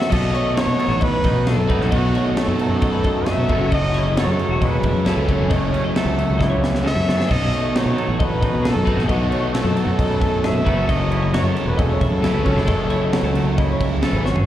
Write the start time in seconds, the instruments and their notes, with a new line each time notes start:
Already playing: clean electric guitar F#2 A3, trumpet E5
0.00 clean electric guitar F#4, snare
0.10 fingered electric bass B1, overdriven electric guitar B2 F#3 A3, clean electric guitar B2 A4 D#5, trumpet D#5, kick, crash
0.14 overdriven electric guitar D#4
0.34 clean electric guitar A3 C#5, crash
0.44 clean electric guitar D#5
0.56 clean electric guitar D#4 C#5, trumpet C#5, snare, crash
0.66 fingered electric bass B2, clean electric guitar A4
0.79 clean electric guitar F#3 A4, crash
0.88 fingered electric bass A1, clean electric guitar F#4
1.00 trumpet B4, clean electric guitar D#5, kick, crash
1.12 clean electric guitar B4
1.24 fingered electric bass A1, clean electric guitar F#2 D#4 D#5, kick, crash
1.32 fingered electric bass B2
1.47 clean electric guitar G#4, trumpet A4, snare, crash
1.56 fingered electric bass F#2, clean electric guitar A4
1.68 overdriven electric guitar B2 F#3 A3 D#4, clean electric guitar D#4 B4, kick, crash
1.79 fingered electric bass B1, clean electric guitar F#4, snare
1.90 fingered electric bass B1, overdriven electric guitar B2 F#3 A3 D#4, clean electric guitar B2 A3 D#5, trumpet F#4, kick, crash
2.14 clean electric guitar A3 C#5, crash
2.25 clean electric guitar D#5
2.37 clean electric guitar A3 C#5, trumpet A4, snare, crash
2.47 fingered electric bass F#2, clean electric guitar A4
2.59 clean electric guitar F#3 A3, crash
2.69 fingered electric bass F#2, clean electric guitar F#4
2.82 clean electric guitar D#5, kick, crash
2.93 clean electric guitar B4
3.04 clean electric guitar F#2 A3 D#5, kick, crash
3.26 clean electric guitar G#4, trumpet E5, snare, crash
3.38 fingered electric bass B2, clean electric guitar A4
3.48 fingered electric bass F#1, overdriven electric guitar F#2 C#3 F#3 A3 C#4, clean electric guitar F#2 F#3 B4, kick, crash
3.52 clean electric guitar A3 E4 A4
3.61 clean electric guitar F#4
3.72 clean electric guitar A3 D#5, trumpet D#5, kick, crash
3.94 clean electric guitar E4 C#5, crash
4.05 clean electric guitar D#5
4.17 clean electric guitar F#3 A4 C#5, trumpet C#5, snare, crash
4.27 fingered electric bass F#2, clean electric guitar A4
4.39 crash
4.49 fingered electric bass E1, clean electric guitar F#4
4.61 clean electric guitar C#3 E4 D#5, trumpet B4, kick, crash
4.74 clean electric guitar C#5
4.83 fingered electric bass E1, clean electric guitar E5, kick, crash
4.94 fingered electric bass F#2
5.04 overdriven electric guitar F#2 C#3 F#3 A3, clean electric guitar E4 A4, trumpet A4, snare, crash
5.09 overdriven electric guitar C#4
5.17 fingered electric bass C#2, clean electric guitar B4
5.26 overdriven electric guitar F#2 C#3 F#3 A3 C#4, clean electric guitar F#2 C#5, kick, crash
5.30 clean electric guitar E4
5.38 fingered electric bass F#1, clean electric guitar G#4
5.50 fingered electric bass F#1, clean electric guitar A3 D#5, trumpet C#5, kick, crash
5.73 clean electric guitar C#4 C#5, crash
5.84 clean electric guitar E4 D#5
5.95 clean electric guitar F#3 A4 C#5, trumpet E5, snare, crash
6.05 fingered electric bass C#2, clean electric guitar A4
6.19 crash
6.27 fingered electric bass C#2, clean electric guitar F#4
6.39 clean electric guitar C#3 E4 D#5, kick, snare
6.50 clean electric guitar C#5
6.61 clean electric guitar E5, snare
6.75 snare
6.82 overdriven electric guitar F#2 C#3 F#3 A3 C#4, clean electric guitar A4
6.87 trumpet E5, snare
6.95 fingered electric bass F#2, clean electric guitar B4
7.06 clean electric guitar F#2 A4 C#5, snare
7.17 clean electric guitar G#4, snare
7.28 fingered electric bass B1, overdriven electric guitar B2 F#3 A3 D#4, clean electric guitar B2 A4 D#5, trumpet D#5, kick, crash
7.51 clean electric guitar C#5, crash
7.55 clean electric guitar A3
7.63 clean electric guitar D#5
7.73 clean electric guitar D#4 C#5, snare, crash
7.77 trumpet C#5
7.86 fingered electric bass B2, clean electric guitar A4
7.98 clean electric guitar F#3 A4, crash
8.08 fingered electric bass A1, clean electric guitar F#4
8.19 trumpet B4, clean electric guitar D#5, kick, crash
8.30 clean electric guitar B4
8.41 fingered electric bass A1, clean electric guitar F#2 D#4 D#5, kick, crash
8.52 fingered electric bass B2
8.62 clean electric guitar G#4, snare, crash
8.68 trumpet A4
8.75 fingered electric bass F#2, clean electric guitar A4
8.85 overdriven electric guitar F#3 A3 D#4, clean electric guitar D#4 B4, kick, crash
8.89 overdriven electric guitar B2
8.96 fingered electric bass B1, clean electric guitar F#4, snare
9.07 fingered electric bass B1, overdriven electric guitar B2 F#3 A3, clean electric guitar B2 A3 D#5, trumpet F#4, kick, crash
9.12 overdriven electric guitar D#4
9.30 clean electric guitar A3 C#5, crash
9.42 clean electric guitar D#5
9.53 clean electric guitar A3 C#5, trumpet A4, snare, crash
9.63 fingered electric bass F#2, clean electric guitar A4
9.75 clean electric guitar F#3 A3, crash
9.87 fingered electric bass F#2, clean electric guitar F#4
9.99 clean electric guitar D#5, kick, crash
10.10 clean electric guitar B4
10.20 clean electric guitar F#2 A3 D#5, kick, crash
10.44 clean electric guitar G#4, trumpet E5, snare, crash
10.53 fingered electric bass B2, clean electric guitar A4
10.64 fingered electric bass F#1, overdriven electric guitar F#2 C#3 F#3 A3 C#4, clean electric guitar F#2 F#3 A3 E4 B4, kick, crash
10.68 clean electric guitar A4
10.78 clean electric guitar F#4
10.89 clean electric guitar A3 D#5, trumpet D#5, kick, crash
11.10 clean electric guitar E4 C#5, crash
11.22 clean electric guitar D#5
11.33 clean electric guitar F#3 F#4 C#5, trumpet C#5, snare, crash
11.43 fingered electric bass F#2, clean electric guitar A4
11.56 crash
11.65 fingered electric bass E1, clean electric guitar F#4, trumpet B4
11.77 clean electric guitar C#3 E4 D#5, trumpet A4, kick, crash
11.90 clean electric guitar C#5
12.01 fingered electric bass E1, clean electric guitar E5, kick, crash
12.10 fingered electric bass F#2
12.22 overdriven electric guitar F#2 C#3 F#3 A3, clean electric guitar E4 A4, snare, crash
12.26 overdriven electric guitar C#4
12.33 fingered electric bass C#2, clean electric guitar B4
12.44 overdriven electric guitar F#2 C#3 F#3 A3 C#4, clean electric guitar F#2 C#4 C#5, kick, crash
12.54 fingered electric bass F#1, clean electric guitar E4 G#4, snare
12.66 fingered electric bass F#1, clean electric guitar A3 D#5, kick, crash
12.89 clean electric guitar E4 C#5, crash
13.02 clean electric guitar D#5
13.12 clean electric guitar F#3 E4 C#5, snare, crash
13.23 fingered electric bass C#2, clean electric guitar A4
13.35 crash
13.44 fingered electric bass C#2, clean electric guitar F#4
13.58 clean electric guitar C#3 E4 D#5, kick, crash
13.70 clean electric guitar C#5
13.80 clean electric guitar E5, kick, crash
14.02 overdriven electric guitar F#2 C#3 F#3 A3, clean electric guitar A4, snare, crash
14.06 overdriven electric guitar C#4
14.13 fingered electric bass G#1, clean electric guitar B4
14.25 clean electric guitar F#2 A4 C#5, snare
14.35 clean electric guitar G#4, floor tom